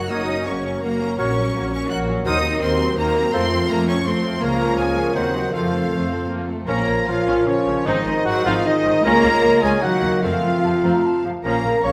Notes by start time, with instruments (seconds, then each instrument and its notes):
Already playing: viola section F#3, harp A#3 F#4 A#4 D#5, violin section D#4
0.09 double bass section F#1, harp F#2, bassoon F#3, viola section A#3, french horn section A#3 F#4, cello section D#4, violin section F#4 A#4 D#6, clarinet A#4, oboe C#5, flute section D#5
0.27 viola section F#3 C#4, harp A#3, violin section C#4 C#5
0.46 double bass section F#1, viola section A#3, french horn section A#3 F#4, cello section C#4, violin section F#4 A#4 C#6, flute section C#5, harp C#5
0.64 viola section F#3 C#4, violin section C#4 C#5, harp A#4
0.82 double bass section F#1, cello section A#3, viola section A#3, french horn section A#3 F#4, violin section F#4 A#4 A#5, flute section A#4, harp C#5
1.00 viola section F#3 C#4, violin section C#4 C#5, harp F#4
1.18 double bass section A#1, harp A#2, bassoon F#3, viola section A#3, french horn section A#3 F#4, cello section C#4, violin section F#4 A#4 C#6, clarinet A#4, flute section C#5, oboe C#5
1.36 viola section F#3 C#4, harp A#3, violin section C#4 C#5
1.53 double bass section A#1, viola section A#3, violin section F#4 A#4, harp C#5
1.72 viola section F#3 C#4, cello section C#4, violin section C#4 C#5 C#6, harp A#4, flute section C#5
1.90 double bass section A#1, french horn section A#3 F#4, viola section A#3, cello section F#4, violin section F#4 A#4 F#6, harp C#5, flute section F#5
2.08 viola section F#3 C#4, violin section C#4 C#5, harp F#4
2.25 double bass section D#2, viola section D#3 A#3, harp D#3, bassoon F#3, french horn section A#3 F#4, cello section D#4, violin section D#4 C5 D#6, clarinet A#4, oboe C5, flute section D#5
2.43 viola section F#3 C4, harp A#3, violin section C4 A#4
2.61 double bass section D#2, viola section D#3 A#3, french horn section A#3 F#4, cello section C4, violin section D#4 C5 C6, harp C5, flute section C5
2.79 viola section F#3 C4, violin section C4 A#4, harp A#4
2.97 double bass section D#2, viola section D#3 A#3, french horn section A#3 F#4, cello section A#3, violin section D#4 C5 A#5, flute section A#4, harp C5
3.15 viola section F#3 C4, violin section C4 A#4, harp F#4
3.33 double bass section F2, harp F3, bassoon F3, french horn section A3 F4, viola section A3, violin section A3 F4 C6, cello section C4, clarinet A4, flute section C5, oboe C5
3.51 viola section F3 C4, violin section C4 A4, harp F4
3.69 double bass section F2, viola section A3, violin section A3 F4 A#5, cello section A#3, harp A4, flute section A#4
3.87 viola section F3 C4, violin section C4 A4 C#6, cello section C#4, flute section C#5, harp F5
4.04 double bass section F2, french horn section A3 F4, viola section A3, violin section A3 F4 C6, cello section C4, harp A4, flute section C5
4.22 viola section F3 C4, violin section C4 A4, harp C5
4.40 double bass section C#2, harp C#3, bassoon F3, viola section A#3, french horn section A#3 F4, cello section A#3, violin section A#3 F4 A#5, clarinet A#4, flute section A#4, oboe C#5
4.58 viola section F3 C#4, violin section C#4 A#4
4.77 double bass section C#2, cello section G#3, viola section A#3, violin section A#3 F4 G#5, flute section G#4, harp C#5
4.96 viola section F3 C#4, violin section C#4 A#4, harp A#4
5.14 double bass section D#2, bassoon D#3, viola section D#3 C4, harp D#3, cello section F#3, french horn section C4 F#4, violin section D#4 F#5, flute section F#4, clarinet C5, oboe C5
5.33 viola section F#3 D#4, violin section C4 F#4, harp F#4 C5
5.52 double bass section F2, bassoon F3, viola section F3 C4, harp F3, cello section F3, violin section A3 F4 F5, french horn section C4 A4, flute section F4, clarinet A4, oboe C5
5.71 viola section A3, harp C4, violin section C4 A4
5.90 double bass section F2, viola section A3, violin section A3 F4, harp C5
6.09 viola section C4, violin section C4 A4, harp A4
6.28 double bass section F2, violin section A3 F4, viola section A#3, harp C5
6.47 viola section A3, violin section C4 A4, harp A4
6.67 double bass section A#1, harp A#2, bassoon F3, cello section A#3, viola section C#4, clarinet F4, french horn section A#4, trumpet A#4, flute section C#5, oboe A#5, violin section A#5
6.77 harp F3
6.87 double bass section A#1, viola section A#3, harp C#4
6.97 harp F4
7.07 double bass section A#1, viola section F3, bassoon F3, cello section F3, trumpet F4, french horn section F4, clarinet F4, harp A#4, flute section C#5, violin section F5, oboe F5
7.18 harp C#5
7.27 double bass section A#1, viola section C#4, harp F5
7.37 harp A#5
7.47 cello section C#3, bassoon F3, trumpet C#4, french horn section C#4, clarinet F4, harp C#5, violin section C#5, oboe C#5, flute section C#5
7.57 harp F4
7.66 double bass section A#1, viola section F3, harp F3
7.85 double bass section G#1, harp G#2, cello section D#3, bassoon G#3, viola section C4 D#4, trumpet D#4, french horn section D#4, clarinet D#4, flute section C5, oboe D#5, violin section D#5
7.97 harp D#3
8.06 double bass section G#1, viola section G#3 C4, harp D#4
8.17 harp G#4
8.25 double bass section G#1, viola section D#3 G#3, cello section F#3, trumpet F#4, french horn section F#4, harp C5, oboe F#5, violin section F#5
8.37 harp D#5
8.45 double bass section G#1, cello section F3, viola section C4 D#4, trumpet F4, french horn section F4, oboe F5, violin section F5, harp G#5
8.56 harp C6
8.65 cello section D#3, bassoon G#3, trumpet D#4, clarinet D#4, french horn section D#4, flute section C5, violin section D#5, oboe D#5, harp D#5
8.76 harp G#4
8.84 double bass section G#1, viola section D#3 G#3, harp D#3
8.95 harp D#4
9.03 double bass section C#2, harp C#3, bassoon G#3, cello section A#3, viola section C#4 F4, clarinet F4, trumpet A#4, french horn section A#4, flute section C#5, violin section A#5, oboe A#5
9.15 harp G#3
9.23 double bass section C#2, viola section G#3 C#4
9.34 harp G#4
9.43 double bass section C#2, viola section F3 G#3, harp C#5
9.62 double bass section C#2, cello section G#3, viola section C#4 F4, trumpet G#4, french horn section G#4, violin section G#5, oboe G#5, harp G#5
9.73 harp C#6
9.82 harp D#3, cello section F#3, bassoon A#3, clarinet D#4, trumpet F#4, french horn section F#4, flute section D#5, violin section F#5, oboe F#5
9.93 harp A#3
10.02 double bass section D#2, viola section D#3 F#3, harp D#4
10.21 double bass section F2, cello section F3, harp F3, viola section A3 C4, bassoon A3, clarinet C4, french horn section F4, trumpet F4, flute section F5, violin section F5, oboe F5
10.33 harp C4
10.42 double bass section F2, viola section F3 A3
10.54 harp A4
10.63 double bass section F2, viola section C3 F3, harp C5, flute section A5
10.83 double bass section F2, viola section A3 C4, harp A5, flute section A#5
10.94 harp C6
11.03 harp F5, flute section A5
11.14 harp A4
11.24 double bass section F2, viola section C3 F3, harp C4, flute section F5
11.34 harp F4
11.44 double bass section A#1, harp A#2, viola section F3 C#4, bassoon A#3, cello section A#3, clarinet C#4, trumpet A#4, french horn section A#4, flute section F5, violin section A#5, oboe A#5
11.54 harp F3
11.64 double bass section A#1, viola section C#3 A#3, harp C#4
11.74 harp F4
11.83 double bass section A#1, viola section C#3 F3, bassoon A#3, clarinet C#4, cello section C#4, harp A#4, trumpet C#5, french horn section C#5, flute section F5, violin section C#6, oboe C#6